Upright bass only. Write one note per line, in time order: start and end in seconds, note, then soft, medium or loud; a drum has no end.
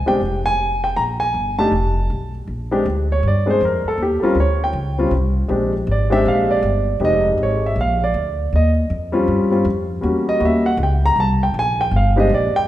0.09 0.21 B1 medium
0.21 0.93 F1 medium
0.97 1.32 A#1 medium
1.34 1.70 G1 medium
1.72 2.07 F1 medium
2.10 2.45 B1 medium
2.47 2.84 A#1 medium
2.86 3.22 D2 medium
3.23 3.60 G2 medium
3.61 3.84 F2 medium
3.84 muted upright bass stroke soft
3.98 4.21 D#2 medium
4.23 muted upright bass stroke soft
4.35 4.72 D2 medium
4.73 5.10 C#2 medium
5.11 5.48 C2 medium
5.49 5.86 A#1 medium
5.87 6.24 G#1 medium
6.25 6.62 A#1 medium
6.63 6.99 G1 medium
7.00 7.37 F1 medium
7.38 7.75 G#1 medium
7.76 8.13 A#1 medium
8.14 8.51 D2 medium
8.53 8.89 D#2 medium
8.90 9.27 F2 medium
9.28 9.64 G2 medium
9.65 10.02 F2 medium
10.03 10.40 E2 medium
10.40 10.77 D#2 medium
10.77 11.15 C#2 medium
11.16 11.53 C2 medium
11.54 11.91 A#1 medium
11.91 12.29 G1 medium
12.30 12.53 A#1 medium
12.55 muted upright bass stroke soft